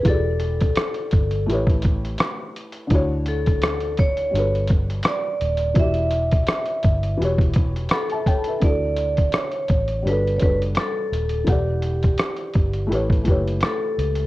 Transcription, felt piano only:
0.03 E3 E4 F#4
0.08 G4 D5
1.46 A3 E4 G4
1.52 B4 C#5
2.87 D3 D4
2.91 E4 F#4 C#5
4.31 G3 D4 F#4
4.37 A4 B4
5.74 E3 E4 F#4
5.80 G4 D5
7.17 E3 E4 F#4
7.22 G4 C#5
7.91 F#5 B5
8.12 E5 A5
8.28 C#5 G5
8.48 B4 E5
8.60 D3 D4 E4
8.65 F#4 A4
10.02 G3 D4 F#4
10.08 A4 B4
10.38 G3 D4 F#4
10.43 A4 C#5
11.44 E3 E4 F#5
11.50 G4 D5
12.87 A3 E4 G4
12.92 B4 C#5
13.23 A3 E4
13.27 G4 B4 C#5

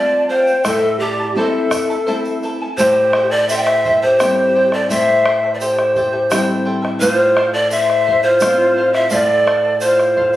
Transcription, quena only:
Already playing: A5
0.32 G5
0.67 E5
1.02 D5
1.37 D#5
1.51 E5
2.77 G4
3.31 A4
3.49 C5
3.56 E5
3.60 C5
4.01 A4
4.06 G4
4.71 A4
4.89 C5
5.54 B4
5.60 G4
6.99 F4
7.52 A4
7.72 C5
8.25 F4
8.93 C5
9.12 A4
9.82 F4

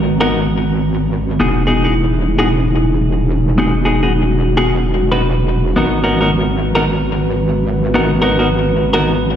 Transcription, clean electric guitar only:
0.21 B3 D#4 F#4 A#4
1.40 B3 D#4 F#4 G#4
1.67 B3 D#4 F#4 G#4
1.84 B3 D#4 F#4 G#4
2.39 B3 D#4 F#4 G#4
3.58 B3 D#4 F#4 G#4
3.85 B3 D#4 F#4 G#4
4.03 B3 D#4 F#4 G#4
4.57 B3 D#4 F#4 G#4
5.12 B3 D#4 F#4 B4
5.76 B3 D#4 F#4 A#4
6.04 B3 D#4 F#4 A#4
6.21 B3 D#4 F#4 A#4
6.75 B3 D#4 F#4 A#4
7.94 B3 D#4 F#4 A#4
8.22 B3 D#4 F#4 A#4
8.39 B3 D#4 F#4 A#4
8.93 B3 D#4 F#4 A#4

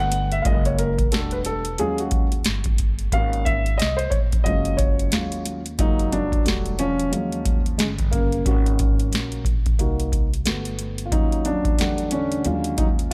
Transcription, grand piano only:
Already playing: A3 B3 F#4
0.00 F#5
0.32 E5
0.42 G#3 A#3 F4 D#5 F5
0.66 C#5
0.79 A#4
1.11 G3 A3 D4 F#4 A4
1.32 B4
1.46 A4
1.79 F#3 G#3 C#4 F4 G#4
2.00 F#4
3.13 A#3 C#4 F#4 F5
3.45 E5
3.78 D#5
3.97 C5
4.10 C#5
4.44 F#3 G#3 C#4 F4 D#5
4.77 C#5
5.12 F#3 G#3 C#4 F4
5.78 F#3 G#3 A#3 D#4 F4
6.12 F#3 D4
6.45 G3 A3 D4 F#4
6.79 F3 C#4
7.12 F#3 G#3 C#4 F4
7.78 C#3 G#3
8.11 C#3 A#3
8.45 A#3 C#4 F#4
9.79 A#3 D#4 F#4
10.45 A3 B3 F#4
11.06 F4
11.12 F#3 C#4 D#4 F4
11.46 F#3 D4
11.79 G3 A3 D4 F#5
12.12 D3 C#4
12.45 F#3 G#3 C#4 F4
12.78 F#3 D#4

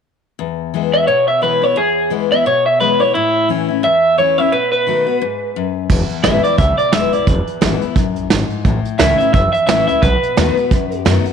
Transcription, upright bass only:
5.90 E1
6.10 muted upright bass stroke
6.25 G#1
6.45 muted upright bass stroke
6.59 C#2
6.93 E1
7.13 B1
7.27 E1
7.48 muted upright bass stroke
7.62 G#1
7.96 A1
8.17 B1
8.31 G#1
8.51 muted upright bass stroke
8.65 A1
8.85 muted upright bass stroke
9.00 C#2
9.34 F#1
9.54 muted upright bass stroke
9.68 A1
9.89 C#2
10.03 B1
10.23 muted upright bass stroke
10.37 D#2
10.57 muted upright bass stroke
10.71 E2
10.91 F#2
11.06 F#2
11.26 muted upright bass stroke

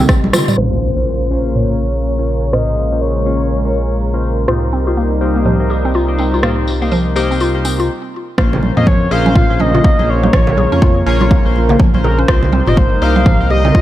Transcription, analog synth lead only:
0.58 C5
1.55 C#5
2.53 D#5
3.01 C#5
8.77 D#5
8.87 C#5
9.11 F5
9.60 D#5
10.09 C#5
12.04 A#4
12.19 C5
12.68 D#5
12.77 C5
13.02 F5
13.51 D#5

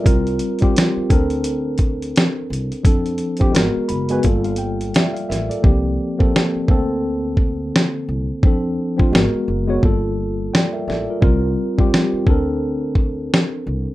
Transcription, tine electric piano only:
0.04 G3 C4 F4 A#4
0.61 G3 C4 F4 G4
1.10 C4 D4 A4 A#4
2.83 F3 C4 D4 A4
3.39 F3 C4 D4 G4
3.52 G#3 B3 F#4 A#4
3.88 B5
4.10 G#3 B3 F#4 B4 G#5
4.24 G3 A#3 F4 A4 F5
4.45 F5
4.58 G5
4.96 D5 E5 G5
5.13 F5
5.29 A#4 E5
5.50 A4 D5
5.62 F3 A#3 C4 G4
6.18 F3 A#3 C4 A4
6.68 D3 A#3 C4 A4
8.44 F3 C4 D4 A4
8.97 F3 C4 D4 F4
9.12 G#3 B3 F#4 A#4
9.67 G#3 B3 F#4 C#5
9.82 G3 A#3 F4 A4
10.53 D5 G5
10.73 A#4 E5
10.88 A4 D5 E5
11.10 F4 A#4
11.21 G3 C4 F4 A#4
11.78 G3 C4 F4 G4
12.28 C4 D4 A4 A#4

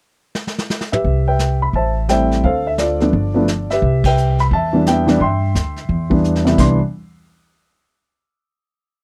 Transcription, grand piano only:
0.92 G4 B4 E5
1.28 B4 E5 G5
1.62 B5
1.76 C5 E5 A5
2.08 G3 A3 C4 E4 C5 E5 G5
2.44 A4 C5 F5
2.67 E5
2.78 F4 A4 D5
3.00 F3 A3 B3 D4
3.34 F3 A3 B3 D4
3.71 G4 B4 E5
4.06 B4 E5 G5
4.40 B5
4.53 E5 A5
4.73 E3 G3 B3 D4
4.87 B3 E5 G5
5.07 E3 G3 B3 D4
5.21 E5 G5 C6
6.10 E3 G3 B3 D4
6.45 C2 E3 G3 B3 E4
6.59 E3 G3 B3 D4 C6

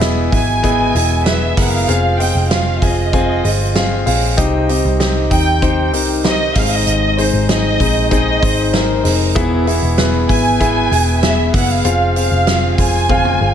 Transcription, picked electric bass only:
Already playing: E1
0.32 G#1
0.95 E1
1.57 F#1
1.88 F1
2.35 F1
2.82 F1
3.45 G1
4.07 A#1
4.38 C2
4.85 C2
5.31 D#2
5.93 C2
6.56 G#1
6.87 G#1
7.33 G#1
7.80 A#1
8.43 G#1
9.05 F1
9.36 E1
9.82 E1
10.29 G#1
10.91 E1
11.54 F#1
11.85 F1
12.31 F1
12.78 F1
13.41 G1

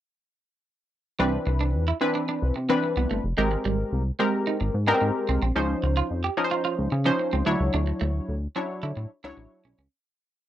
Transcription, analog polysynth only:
1.19 E3 C4 D4 B4
2.01 E3 C4 D4 B4
2.69 E3 C4 D4 B4
3.37 G#3 C4 G4 A#4
4.19 G#3 C4 G4 A#4
4.87 G#3 B3 G4 A#4
4.94 C4
5.55 F3 C#4 D#4 C5
6.37 F3 C#4 D#4 A#4
6.44 C5
7.05 F3 C#4 D#4 C5
7.46 F#3 D4 E4 C#5
8.56 F#3 D4 E4 C#5
9.24 F#3 D4 E4 C#5

